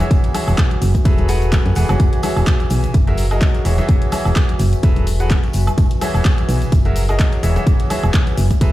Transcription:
Already playing: F#4 G#4 C#5 F#5
0.00 E3 F#4 G#4 C#5 E5, closed hi-hat, tambourine, high conga, shaker
0.10 E1 B4, kick, closed hi-hat, tambourine, shaker
0.24 closed hi-hat, tambourine
0.29 E5 G#5
0.34 E3 F#4 G#4 C#5 E5, open hi-hat, tambourine, high conga, high woodblock, shaker
0.47 E1, tambourine, high woodblock, shaker
0.58 kick, clap, closed hi-hat, tambourine, shaker
0.70 closed hi-hat, tambourine, high conga
0.82 F#1, open hi-hat, tambourine, shaker
0.94 kick, closed hi-hat, tambourine, shaker
1.05 E1 F#3 G#4 A4 B4 E5, kick, closed hi-hat, tambourine, shaker
1.18 closed hi-hat, tambourine, high conga
1.28 F#3 G#4 A4 B4 F#5, open hi-hat, tambourine, shaker
1.41 closed hi-hat, tambourine, shaker
1.52 kick, clap, closed hi-hat, tambourine, high conga, shaker
1.65 F#2, closed hi-hat, tambourine
1.75 E1 E3 G#4 A4 B4 F#5, open hi-hat, tambourine, shaker
1.89 F#1 E3 F#4 G#4 C#5 F#5, closed hi-hat, tambourine, high conga, high woodblock, shaker
2.00 E1, kick, closed hi-hat, tambourine, shaker
2.12 closed hi-hat, tambourine
2.23 E3 F#4 G#4 C#5 E5, open hi-hat, tambourine, high conga, high woodblock, shaker
2.36 E1, tambourine, high woodblock, shaker
2.47 kick, clap, closed hi-hat, tambourine, shaker
2.60 closed hi-hat, tambourine, high conga
2.70 B1, open hi-hat, tambourine, shaker
2.84 closed hi-hat, tambourine, shaker
2.94 F#1 G#4, kick, closed hi-hat, tambourine, shaker
3.07 F#3 F#4 G#4 A#4 C#5 E5, closed hi-hat, tambourine, high conga
3.17 open hi-hat, tambourine, shaker
3.27 F#5
3.31 F#3 F#4 G#4 A#4 D#5, closed hi-hat, tambourine, high woodblock, shaker
3.41 kick, clap, closed hi-hat, tambourine, high conga, shaker
3.54 closed hi-hat, tambourine
3.65 E1 E3 F#4 G#4 C#5 E5, open hi-hat, tambourine, shaker
3.78 E3 F#4 G#4 C#5 E5, closed hi-hat, tambourine, high conga, shaker
3.89 E1 B4, kick, closed hi-hat, tambourine, shaker
3.93 G#5
4.02 E5, closed hi-hat, tambourine
4.12 E3 F#4 G#4 C#5 E5, open hi-hat, tambourine, high conga, high woodblock, shaker
4.25 E1, tambourine, high woodblock, shaker
4.36 kick, clap, closed hi-hat, tambourine, shaker
4.49 closed hi-hat, tambourine, high conga
4.59 F#1, open hi-hat, tambourine, shaker
4.73 closed hi-hat, tambourine, shaker
4.83 E1 F#3 G#4 A4 B4 E5, kick, closed hi-hat, tambourine, shaker
4.96 closed hi-hat, tambourine, high conga
5.07 open hi-hat, tambourine, shaker
5.20 F#3 G#4 A4 B4 F#5, closed hi-hat, tambourine, shaker
5.30 kick, clap, closed hi-hat, tambourine, high conga, shaker
5.44 closed hi-hat, tambourine
5.53 F#1, open hi-hat, tambourine, shaker
5.67 closed hi-hat, tambourine, high conga, high woodblock, shaker
5.78 E1, kick, closed hi-hat, tambourine, shaker
5.91 closed hi-hat, tambourine
6.01 E3 F#4 G#4 C#5 E5, open hi-hat, tambourine, high conga, high woodblock, shaker
6.14 E1, tambourine, high woodblock, shaker
6.25 kick, clap, closed hi-hat, tambourine, shaker
6.38 closed hi-hat, tambourine, high conga
6.49 B1, open hi-hat, tambourine, shaker
6.62 closed hi-hat, tambourine, shaker
6.72 F#1 G#4, kick, closed hi-hat, tambourine, shaker
6.85 F#3 F#4 G#4 A#4 C#5 E5, closed hi-hat, tambourine, high conga
6.95 F#5, open hi-hat, tambourine, shaker
7.09 F#3 F#4 G#4 A#4 D#5, closed hi-hat, tambourine, high woodblock, shaker
7.19 kick, clap, closed hi-hat, tambourine, high conga, shaker
7.32 closed hi-hat, tambourine
7.43 E1 E3 F#4 G#4 C#5 E5, open hi-hat, tambourine, shaker
7.54 E3 F#4 G#4 B4 C#5 E5, closed hi-hat, tambourine, high conga, shaker
7.67 E1, kick, closed hi-hat, tambourine, shaker
7.80 G#5, closed hi-hat, tambourine
7.86 E5
7.90 E3 F#4 G#4 C#5 E5, open hi-hat, tambourine, high conga, high woodblock, shaker
8.03 E1, closed hi-hat, tambourine, high woodblock, shaker
8.13 kick, clap, closed hi-hat, tambourine, shaker
8.27 closed hi-hat, tambourine, high conga
8.37 F#1, open hi-hat, tambourine, shaker
8.51 kick, closed hi-hat, tambourine, shaker
8.61 E1 F#3 G#4 A4 B4 E5, kick, closed hi-hat, tambourine, shaker

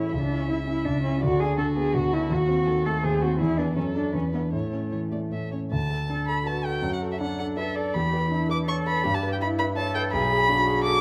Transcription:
Already playing: A2 E3 C#4 E4 C#5
0.12 C#2 E5
0.22 D4
0.31 E4
0.41 C#4
0.49 C#3 E4
0.67 C#4 E4
0.86 C#2 D4
1.04 C#4 E4
1.22 D2 F#4 D5
1.40 D4 G#4
1.58 D3 F#4 A4
1.77 B3 G#4
1.94 D2 F#4
2.12 D4 E4
2.30 D#2 F#4
2.49 C4
2.67 D#3 A4
2.86 A3 A4
3.03 D#2 G#4 C5
3.22 C4 F#4
3.39 E2 E4 G#4
3.58 B3 D4 B4
3.76 F#2 C#4 A4
3.95 D4 A4
4.13 E2 C#4 B4
4.34 B3 D4 E4
4.53 A2 A3 C#5
4.73 C#4
4.92 E3 C#5
5.12 A3 D5
5.32 A2 E5
5.52 C#4 C#5
5.71 D2 A5
5.90 A4
6.10 D4 A4
6.28 A4 B5
6.46 F#4 B4 A5
6.65 A4 G5
6.82 F#2
6.93 F#5
7.02 A4
7.12 E5
7.20 D4 F#5
7.39 A4 F#5
7.57 A4 B4 E5
7.76 A4 D5
7.94 E2 G4 B5
8.13 B4
8.31 D4 E4
8.49 B4 D6
8.67 A4 C#5 C#6
8.86 B4 B5
9.04 G2 G4
9.14 A5
9.23 B4
9.32 G5
9.41 E4 B5
9.59 B4 B5
9.77 A4 C#5 A5
9.95 B4 G5
10.12 B1 G#4 B5
10.31 G#4
10.49 D4 F#4
10.67 G#4
10.84 A4 D6

